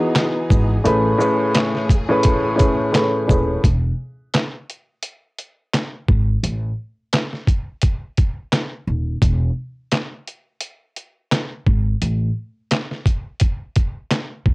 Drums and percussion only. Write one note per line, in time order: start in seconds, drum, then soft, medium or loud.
0.16 snare loud
0.16 clap medium
0.16 closed hi-hat medium
0.50 kick loud
0.50 shaker medium
0.86 closed hi-hat medium
1.20 shaker medium
1.55 snare loud
1.55 clap medium
1.55 closed hi-hat medium
1.75 snare soft
1.89 kick loud
1.89 closed hi-hat medium
1.89 shaker medium
2.23 kick loud
2.23 closed hi-hat loud
2.59 kick loud
2.59 closed hi-hat medium
2.59 shaker medium
2.95 snare loud
2.95 clap medium
2.95 closed hi-hat medium
3.29 kick loud
3.29 shaker medium
3.64 kick loud
3.64 closed hi-hat medium
4.34 snare loud
4.34 clap medium
4.34 closed hi-hat medium
4.70 closed hi-hat medium
5.03 closed hi-hat medium
5.38 closed hi-hat medium
5.74 snare loud
5.74 clap medium
5.74 closed hi-hat medium
6.08 kick medium
6.44 closed hi-hat medium
7.13 snare loud
7.13 clap medium
7.13 closed hi-hat medium
7.33 snare soft
7.47 kick medium
7.47 closed hi-hat medium
7.82 kick medium
7.82 closed hi-hat medium
8.17 kick medium
8.17 closed hi-hat medium
8.53 snare loud
8.53 clap medium
8.53 closed hi-hat medium
9.22 kick loud
9.22 closed hi-hat medium
9.92 snare loud
9.92 clap medium
9.92 closed hi-hat medium
10.28 closed hi-hat medium
10.61 closed hi-hat medium
10.96 closed hi-hat medium
11.32 snare loud
11.32 clap medium
11.32 closed hi-hat medium
11.66 kick medium
12.02 closed hi-hat medium
12.71 snare loud
12.71 clap medium
12.71 closed hi-hat medium
12.91 snare soft
13.06 kick medium
13.06 closed hi-hat medium
13.40 kick medium
13.40 closed hi-hat medium
13.76 kick medium
13.76 closed hi-hat medium
14.11 snare loud
14.11 clap medium
14.11 closed hi-hat medium
14.46 kick medium